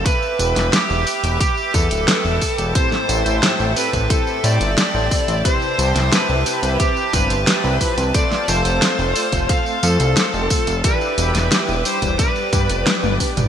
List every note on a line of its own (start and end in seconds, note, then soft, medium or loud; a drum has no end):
0.05 2.72 B4 medium
0.05 0.75 B4 loud
0.05 2.72 E5 medium
0.05 8.10 G5 medium
0.05 2.73 D6 medium
0.05 kick loud
0.05 closed hi-hat medium
0.05 tambourine soft
0.23 tambourine soft
0.39 0.54 E1 loud
0.39 closed hi-hat medium
0.39 tambourine medium
0.56 0.71 E1 medium
0.56 snare soft
0.56 closed hi-hat medium
0.56 tambourine soft
0.73 1.39 G4 medium
0.73 snare loud
0.73 closed hi-hat medium
0.73 tambourine soft
0.90 1.05 E1 medium
0.90 tambourine soft
1.07 open hi-hat medium
1.07 tambourine medium
1.24 1.39 E1 medium
1.24 closed hi-hat medium
1.24 tambourine soft
1.40 1.75 G4 loud
1.40 kick loud
1.40 closed hi-hat medium
1.40 tambourine soft
1.57 tambourine soft
1.74 1.89 E2 loud
1.74 2.75 A4 loud
1.74 kick loud
1.74 closed hi-hat medium
1.74 tambourine medium
1.91 2.06 D1 medium
1.91 closed hi-hat medium
1.91 tambourine soft
2.08 snare loud
2.08 closed hi-hat medium
2.08 tambourine soft
2.25 2.40 E1 medium
2.25 tambourine soft
2.41 kick medium
2.41 open hi-hat medium
2.41 tambourine medium
2.58 2.74 E1 medium
2.58 closed hi-hat medium
2.58 tambourine soft
2.75 3.05 A2 loud
2.75 3.05 C4 medium
2.75 3.05 E4 medium
2.75 3.05 G4 medium
2.75 3.05 A4 medium
2.75 5.42 A4 medium
2.75 3.05 C5 loud
2.75 3.72 C5 loud
2.75 8.11 E5 medium
2.75 10.80 A5 medium
2.75 kick loud
2.75 closed hi-hat medium
2.75 tambourine soft
2.92 snare soft
2.92 tambourine soft
3.09 3.24 A1 loud
3.09 3.39 A2 medium
3.09 3.39 C4 medium
3.09 3.39 E4 medium
3.09 3.39 G4 medium
3.09 3.39 A4 medium
3.09 3.39 B4 medium
3.09 closed hi-hat medium
3.09 tambourine medium
3.26 3.41 A1 medium
3.26 closed hi-hat medium
3.26 tambourine soft
3.43 3.65 A2 loud
3.43 3.65 C4 medium
3.43 3.65 E4 medium
3.43 3.65 G4 medium
3.43 3.65 A4 loud
3.43 3.65 E5 loud
3.43 snare loud
3.43 closed hi-hat medium
3.43 tambourine soft
3.60 3.75 A1 medium
3.60 tambourine soft
3.76 3.89 A2 loud
3.76 3.89 C4 loud
3.76 3.89 E4 medium
3.76 3.89 G4 medium
3.76 3.89 A4 medium
3.76 4.10 B4 loud
3.76 3.89 D5 loud
3.76 open hi-hat medium
3.76 tambourine medium
3.93 4.08 A1 medium
3.93 4.06 A2 loud
3.93 4.06 C4 medium
3.93 4.06 E4 medium
3.93 4.06 G4 medium
3.93 4.06 A4 medium
3.93 4.06 C5 loud
3.93 kick medium
3.93 closed hi-hat medium
3.93 tambourine soft
4.10 4.40 A2 medium
4.10 4.40 C4 medium
4.10 4.40 E4 medium
4.10 4.40 G4 medium
4.10 4.40 A4 medium
4.10 4.45 A4 loud
4.10 4.40 C5 medium
4.10 kick loud
4.10 closed hi-hat medium
4.10 tambourine soft
4.27 tambourine soft
4.44 4.66 A2 medium
4.44 4.59 A2 loud
4.44 4.66 C4 medium
4.44 4.66 E4 medium
4.44 4.66 G4 medium
4.44 4.66 A4 medium
4.44 4.66 C5 loud
4.44 5.41 D5 loud
4.44 closed hi-hat medium
4.44 tambourine medium
4.61 4.76 G1 medium
4.61 closed hi-hat medium
4.61 tambourine soft
4.78 snare loud
4.78 closed hi-hat medium
4.78 tambourine soft
4.94 5.09 A1 medium
4.94 5.07 A2 medium
4.94 5.07 C4 medium
4.94 5.07 E4 medium
4.94 5.07 G4 medium
4.94 5.07 A4 medium
4.94 5.07 C5 loud
4.94 tambourine soft
5.11 5.33 C3 medium
5.11 5.33 C4 medium
5.11 5.33 E4 medium
5.11 5.33 G4 medium
5.11 5.33 A4 medium
5.11 5.33 C5 medium
5.11 kick loud
5.11 open hi-hat medium
5.11 tambourine medium
5.28 5.43 A1 medium
5.28 closed hi-hat medium
5.28 tambourine soft
5.45 5.75 C3 loud
5.45 5.75 C4 medium
5.45 5.75 E4 medium
5.45 8.12 G4 medium
5.45 5.75 G4 medium
5.45 5.75 B4 medium
5.45 6.12 C5 loud
5.45 5.75 C5 loud
5.45 kick loud
5.45 closed hi-hat medium
5.45 tambourine soft
5.62 tambourine soft
5.79 5.94 C2 loud
5.79 6.08 C3 medium
5.79 6.08 C4 medium
5.79 6.08 E4 medium
5.79 6.08 G4 medium
5.79 6.08 B4 medium
5.79 6.08 C5 medium
5.79 closed hi-hat medium
5.79 tambourine medium
5.96 6.11 C2 medium
5.96 snare soft
5.96 closed hi-hat medium
5.96 tambourine soft
6.12 6.35 C3 loud
6.12 6.35 C4 medium
6.12 6.35 E4 medium
6.12 6.35 G4 medium
6.12 6.76 B4 loud
6.12 6.35 B4 loud
6.12 6.35 C5 loud
6.12 snare loud
6.12 closed hi-hat medium
6.12 tambourine soft
6.29 6.44 C2 medium
6.29 tambourine soft
6.46 6.59 C3 loud
6.46 6.59 C4 medium
6.46 6.59 E4 medium
6.46 6.59 G4 medium
6.46 6.59 B4 medium
6.46 6.59 C5 loud
6.46 open hi-hat medium
6.46 tambourine medium
6.63 6.78 C2 medium
6.63 6.76 C3 medium
6.63 6.76 C4 medium
6.63 6.76 E4 medium
6.63 6.76 G4 medium
6.63 6.76 B4 medium
6.63 6.76 C5 loud
6.63 closed hi-hat medium
6.63 tambourine soft
6.80 7.09 C3 medium
6.80 7.09 C4 medium
6.80 7.09 E4 medium
6.80 7.14 G4 loud
6.80 7.09 G4 medium
6.80 7.09 B4 medium
6.80 7.09 C5 medium
6.80 kick loud
6.80 closed hi-hat medium
6.80 tambourine soft
6.97 tambourine soft
7.13 7.29 G1 loud
7.13 7.36 C3 medium
7.13 7.36 C4 medium
7.13 7.36 E4 medium
7.13 7.36 G4 medium
7.13 7.36 B4 medium
7.13 8.18 B4 loud
7.13 7.36 C5 loud
7.13 kick loud
7.13 closed hi-hat medium
7.13 tambourine medium
7.30 7.45 G1 medium
7.30 closed hi-hat medium
7.30 tambourine soft
7.47 snare loud
7.47 closed hi-hat medium
7.47 tambourine soft
7.64 7.79 C2 medium
7.64 7.77 C3 loud
7.64 7.77 C4 medium
7.64 7.77 E4 medium
7.64 7.77 G4 medium
7.64 7.77 B4 medium
7.64 7.77 C5 loud
7.64 tambourine soft
7.81 8.03 F3 medium
7.81 8.03 C4 medium
7.81 8.03 E4 medium
7.81 8.03 G4 medium
7.81 8.03 B4 medium
7.81 8.03 C5 medium
7.81 kick medium
7.81 open hi-hat medium
7.81 tambourine medium
7.98 8.13 C2 medium
7.98 closed hi-hat medium
7.98 tambourine soft
8.14 8.44 A3 loud
8.14 8.44 C4 medium
8.14 8.44 F4 medium
8.14 10.81 A4 medium
8.14 8.44 A4 medium
8.14 10.81 C5 medium
8.14 8.44 C5 loud
8.14 8.49 D5 loud
8.14 10.81 F5 medium
8.14 kick loud
8.14 closed hi-hat medium
8.14 tambourine soft
8.31 snare soft
8.31 tambourine soft
8.48 8.63 F1 loud
8.48 8.78 A3 medium
8.48 8.78 C4 medium
8.48 8.78 F4 medium
8.48 8.78 A4 medium
8.48 8.78 C5 medium
8.48 9.52 C5 loud
8.48 closed hi-hat medium
8.48 tambourine medium
8.65 8.80 F1 medium
8.65 closed hi-hat medium
8.65 tambourine soft
8.82 9.04 A3 loud
8.82 9.04 C4 loud
8.82 9.04 F4 medium
8.82 9.04 A4 medium
8.82 9.04 F5 loud
8.82 snare loud
8.82 closed hi-hat medium
8.82 tambourine soft
8.99 9.14 F1 medium
8.99 tambourine soft
9.16 9.29 A3 loud
9.16 9.29 C4 medium
9.16 9.29 F4 medium
9.16 9.29 A4 medium
9.16 9.29 D5 loud
9.16 open hi-hat medium
9.16 tambourine medium
9.32 9.48 F1 medium
9.32 9.45 A3 medium
9.32 9.45 C4 medium
9.32 9.45 F4 medium
9.32 9.45 A4 medium
9.32 9.45 C5 loud
9.32 kick medium
9.32 closed hi-hat medium
9.32 tambourine soft
9.49 9.79 A3 medium
9.49 9.79 C4 medium
9.49 9.79 F4 medium
9.49 9.79 A4 medium
9.49 9.79 C5 medium
9.49 9.84 F5 loud
9.49 kick loud
9.49 closed hi-hat medium
9.49 tambourine soft
9.66 tambourine soft
9.83 9.98 F2 loud
9.83 10.05 A3 medium
9.83 10.05 C4 medium
9.83 10.05 F4 medium
9.83 10.05 A4 medium
9.83 10.80 A4 loud
9.83 10.05 C5 loud
9.83 closed hi-hat medium
9.83 tambourine medium
10.00 10.15 C2 medium
10.00 closed hi-hat medium
10.00 tambourine soft
10.17 snare loud
10.17 closed hi-hat medium
10.17 tambourine soft
10.34 10.49 F1 medium
10.34 10.46 A3 medium
10.34 10.46 C4 medium
10.34 10.46 F4 medium
10.34 10.46 A4 medium
10.34 10.47 C5 loud
10.34 tambourine soft
10.50 10.73 A3 medium
10.50 10.73 C4 medium
10.50 10.73 F4 medium
10.50 10.73 A4 medium
10.50 10.73 C5 medium
10.50 kick loud
10.50 open hi-hat medium
10.50 tambourine medium
10.67 10.82 F1 medium
10.67 closed hi-hat medium
10.67 tambourine soft
10.84 11.14 E3 loud
10.84 11.14 D4 medium
10.84 11.14 E4 loud
10.84 13.48 G4 medium
10.84 11.14 G4 medium
10.84 11.14 B4 medium
10.84 11.85 B4 loud
10.84 11.14 D5 loud
10.84 12.18 E5 medium
10.84 13.48 G5 medium
10.84 13.48 D6 medium
10.84 kick loud
10.84 closed hi-hat medium
10.84 tambourine soft
11.01 tambourine soft
11.18 11.33 E1 medium
11.18 11.48 E3 medium
11.18 11.48 D4 medium
11.18 11.48 E4 medium
11.18 11.48 G4 medium
11.18 11.48 B4 medium
11.18 11.48 D5 medium
11.18 closed hi-hat medium
11.18 tambourine medium
11.35 11.50 E1 medium
11.35 snare soft
11.35 closed hi-hat medium
11.35 tambourine soft
11.52 11.74 E3 loud
11.52 11.74 D4 medium
11.52 11.74 E4 medium
11.52 11.74 G4 medium
11.52 11.74 B4 medium
11.52 11.74 G5 loud
11.52 snare loud
11.52 closed hi-hat loud
11.52 tambourine soft
11.68 11.84 E1 medium
11.68 tambourine soft
11.85 11.98 G3 loud
11.85 11.98 D4 loud
11.85 11.98 E4 medium
11.85 11.98 G4 medium
11.85 11.98 B4 medium
11.85 12.19 C5 loud
11.85 11.98 E5 loud
11.85 open hi-hat medium
11.85 tambourine medium
12.02 12.17 E1 medium
12.02 12.15 G3 medium
12.02 12.15 D4 medium
12.02 12.15 E4 medium
12.02 12.15 G4 medium
12.02 12.15 B4 medium
12.02 12.15 D5 loud
12.02 kick medium
12.02 closed hi-hat medium
12.02 tambourine soft
12.19 12.49 G2 medium
12.19 12.49 B3 medium
12.19 12.49 D4 medium
12.19 12.49 G4 medium
12.19 12.49 B4 medium
12.19 13.16 B4 loud
12.19 13.48 D5 medium
12.19 12.49 D5 medium
12.19 kick loud
12.19 closed hi-hat loud
12.19 tambourine soft
12.36 tambourine soft
12.53 12.68 G2 loud
12.53 12.75 G2 medium
12.53 12.75 B3 medium
12.53 12.75 D4 medium
12.53 12.75 G4 medium
12.53 12.75 B4 medium
12.53 12.75 D5 loud
12.53 kick loud
12.53 closed hi-hat medium
12.53 tambourine medium
12.70 12.85 F1 medium
12.70 closed hi-hat medium
12.70 tambourine soft
12.87 snare loud
12.87 closed hi-hat loud
12.87 high tom medium
12.87 tambourine soft
13.03 13.18 G1 medium
13.03 13.16 G2 loud
13.03 13.16 B3 medium
13.03 13.16 D4 medium
13.03 13.16 G4 medium
13.03 13.16 B4 medium
13.03 13.16 D5 loud
13.03 high tom medium
13.03 tambourine soft
13.20 13.42 B3 medium
13.20 13.42 D4 medium
13.20 13.42 G4 medium
13.20 13.42 B4 medium
13.20 13.42 D5 medium
13.20 kick medium
13.20 open hi-hat medium
13.20 tambourine medium
13.37 13.48 G1 medium
13.37 closed hi-hat medium
13.37 mid tom medium
13.37 tambourine soft